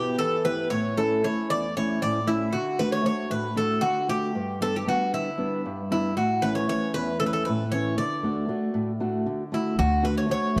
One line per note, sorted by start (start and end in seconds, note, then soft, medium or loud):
0.00 0.19 B2 medium
0.00 0.35 B3 soft
0.00 0.35 E4 soft
0.00 0.17 G4 medium
0.00 0.36 G4 medium
0.19 0.70 E3 medium
0.19 0.43 A4 medium
0.45 0.66 B3 soft
0.45 0.66 E4 soft
0.45 0.67 G4 medium
0.45 0.69 B4 medium
0.70 1.22 A2 medium
0.70 0.95 C#5 medium
0.97 1.23 A3 soft
0.97 1.23 C#4 soft
0.97 1.24 E4 soft
0.97 1.24 A4 medium
1.24 1.66 A3 soft
1.24 1.66 C#4 soft
1.24 1.66 E4 soft
1.24 1.50 C#5 medium
1.50 2.01 E2 medium
1.50 1.76 D5 medium
1.77 2.18 A3 soft
1.77 2.18 C#4 soft
1.77 2.18 E4 soft
1.77 2.00 C#5 medium
2.02 2.53 A2 medium
2.02 2.29 D5 medium
2.27 2.48 A3 soft
2.27 2.48 C#4 soft
2.27 2.52 E4 medium
2.27 2.49 E4 medium
2.53 3.05 D3 medium
2.53 2.80 F#4 medium
2.79 3.03 A3 soft
2.79 3.03 D4 soft
2.79 3.04 F#4 soft
2.79 2.92 B4 medium
2.92 3.05 C#5 medium
3.04 3.46 A3 soft
3.04 3.47 D4 soft
3.04 3.47 F#4 soft
3.04 3.30 C#5 medium
3.30 3.81 A2 medium
3.30 3.57 B4 medium
3.56 3.98 A3 soft
3.56 3.98 D4 soft
3.56 3.99 F#4 medium
3.56 3.82 A4 medium
3.81 4.33 D3 medium
3.81 4.09 F#4 medium
4.09 4.30 A3 soft
4.09 4.30 D4 soft
4.09 4.30 F#4 medium
4.09 4.58 G4 medium
4.35 4.86 G2 medium
4.61 4.85 G3 soft
4.61 4.86 B3 soft
4.61 4.86 D4 soft
4.61 4.75 A4 medium
4.76 4.88 G4 medium
4.87 5.28 G3 soft
4.87 5.29 B3 soft
4.87 5.29 D4 medium
4.87 5.12 F#4 medium
5.14 5.64 D3 medium
5.14 5.91 E4 medium
5.38 5.80 G3 soft
5.38 5.80 B3 soft
5.38 5.80 D4 medium
5.65 6.16 G2 medium
5.90 6.11 G3 soft
5.90 6.12 B3 soft
5.90 6.12 D4 medium
5.90 6.16 E4 medium
6.17 6.67 A2 medium
6.17 6.44 F#4 medium
6.42 6.67 E3 soft
6.42 6.68 A3 soft
6.42 6.68 C#4 soft
6.42 6.55 B4 medium
6.55 6.68 C#5 medium
6.68 7.10 E3 soft
6.68 7.10 A3 soft
6.68 7.10 C#4 soft
6.68 6.94 C#5 medium
6.94 7.45 E2 medium
6.94 7.18 B4 medium
7.20 7.62 E3 soft
7.20 7.62 A3 soft
7.20 7.63 C#4 soft
7.20 7.26 A4 medium
7.26 7.33 B4 medium
7.33 7.45 A4 medium
7.45 7.98 A2 medium
7.45 7.70 B4 medium
7.72 7.93 E3 soft
7.72 7.94 A3 soft
7.72 7.94 C#4 soft
7.72 7.98 C#5 medium
7.98 8.48 D3 medium
7.98 9.49 D5 medium
8.23 8.47 A3 soft
8.23 8.47 D4 soft
8.23 8.48 F#4 medium
8.48 8.90 A3 soft
8.48 8.90 D4 soft
8.48 8.91 F#4 soft
8.74 9.25 A2 medium
9.00 9.42 A3 soft
9.00 9.42 D4 soft
9.00 9.43 F#4 medium
9.26 9.77 D3 medium
9.52 9.73 A3 soft
9.52 9.73 D4 soft
9.52 9.78 E4 medium
9.52 9.74 F#4 soft
9.79 10.33 D2 medium
9.79 10.29 D3 medium
9.79 10.03 F#4 medium
10.03 10.27 A3 soft
10.03 10.28 D4 soft
10.03 10.28 F#4 medium
10.03 10.17 B4 medium
10.18 10.30 C#5 medium
10.28 10.55 A3 soft
10.28 10.60 D4 soft
10.28 10.60 F#4 soft
10.28 10.57 C#5 medium
10.56 10.60 A1 medium
10.56 10.60 A3 medium